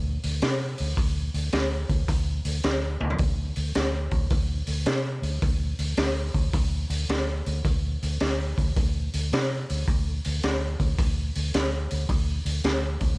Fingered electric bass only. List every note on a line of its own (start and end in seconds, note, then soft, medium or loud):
0.00 0.18 D2 medium
0.24 0.40 D2 medium
0.42 0.74 C3 medium
0.80 0.96 D2 medium
0.98 1.29 D2 medium
1.34 1.50 D2 medium
1.53 1.84 D2 medium
1.89 2.06 D2 medium
2.08 2.40 D2 medium
2.45 2.61 D2 medium
2.64 2.96 D2 medium
3.01 3.17 D2 medium
3.19 3.51 D2 medium
3.57 3.73 D2 medium
3.76 4.07 D2 medium
4.12 4.28 D2 medium
4.31 4.62 D2 loud
4.68 4.84 D2 medium
4.86 5.18 C3 medium
5.22 5.39 D2 medium
5.42 5.74 D2 medium
5.79 5.95 D2 medium
5.97 6.29 D2 medium
6.35 6.51 D2 medium
6.53 6.85 D2 medium
6.90 7.06 D2 medium
7.09 7.40 D2 medium
7.47 7.62 D2 medium
7.65 7.96 D2 medium
8.03 8.18 D2 medium
8.21 8.52 D2 medium
8.58 8.74 D2 medium
8.77 9.08 D2 medium
9.14 9.30 D2 medium
9.32 9.63 C3 medium
9.70 9.86 D2 medium
9.88 10.19 D2 medium
10.26 10.41 D2 medium
10.44 10.75 D2 medium
10.80 10.96 D2 medium
10.99 11.30 D2 medium
11.36 11.52 D2 medium
11.55 11.86 D2 medium
11.92 12.07 D2 medium
12.09 12.40 D2 medium
12.45 12.62 D2 medium
12.64 12.96 D2 loud
13.01 13.17 D2 medium